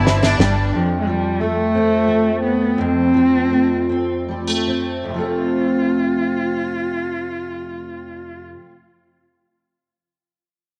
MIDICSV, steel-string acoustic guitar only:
0, 0, Header, 1, 2, 480
1, 0, Start_track
1, 0, Tempo, 681044
1, 510, Time_signature, 6, 3, 24, 8
1, 1957, Tempo, 748130
1, 2917, Tempo, 835655
1, 6662, End_track
2, 0, Start_track
2, 0, Title_t, "Steel-string acoustic guitar"
2, 0, Program_c, 0, 25
2, 0, Note_on_c, 0, 43, 79
2, 0, Note_on_c, 0, 50, 68
2, 0, Note_on_c, 0, 55, 59
2, 0, Note_on_c, 0, 59, 59
2, 33, Note_on_c, 0, 60, 62
2, 158, Note_off_c, 0, 60, 0
2, 158, Note_on_c, 0, 62, 59
2, 268, Note_off_c, 0, 55, 0
2, 277, Note_on_c, 0, 55, 57
2, 508, Note_off_c, 0, 43, 0
2, 512, Note_on_c, 0, 41, 65
2, 555, Note_off_c, 0, 59, 0
2, 556, Note_off_c, 0, 50, 0
2, 558, Note_off_c, 0, 62, 0
2, 559, Note_off_c, 0, 55, 0
2, 755, Note_on_c, 0, 53, 48
2, 993, Note_on_c, 0, 57, 48
2, 1231, Note_on_c, 0, 60, 55
2, 1462, Note_off_c, 0, 57, 0
2, 1465, Note_on_c, 0, 57, 46
2, 1951, Note_off_c, 0, 41, 0
2, 1959, Note_on_c, 0, 41, 61
2, 2188, Note_off_c, 0, 53, 0
2, 2191, Note_on_c, 0, 53, 48
2, 2421, Note_off_c, 0, 57, 0
2, 2423, Note_on_c, 0, 57, 40
2, 2670, Note_off_c, 0, 60, 0
2, 2673, Note_on_c, 0, 60, 49
2, 2921, Note_off_c, 0, 57, 0
2, 2923, Note_on_c, 0, 55, 42
2, 3031, Note_off_c, 0, 55, 0
2, 3031, Note_on_c, 0, 57, 37
2, 3142, Note_off_c, 0, 60, 0
2, 3145, Note_on_c, 0, 60, 44
2, 3346, Note_off_c, 0, 41, 0
2, 3353, Note_on_c, 0, 41, 50
2, 3387, Note_on_c, 0, 48, 54
2, 3413, Note_off_c, 0, 53, 0
2, 3415, Note_on_c, 0, 53, 54
2, 3432, Note_off_c, 0, 57, 0
2, 3439, Note_on_c, 0, 57, 59
2, 3463, Note_off_c, 0, 60, 0
2, 3465, Note_on_c, 0, 60, 54
2, 5364, Note_off_c, 0, 41, 0
2, 5397, Note_off_c, 0, 48, 0
2, 5426, Note_off_c, 0, 53, 0
2, 5449, Note_off_c, 0, 57, 0
2, 5476, Note_off_c, 0, 60, 0
2, 6662, End_track
0, 0, End_of_file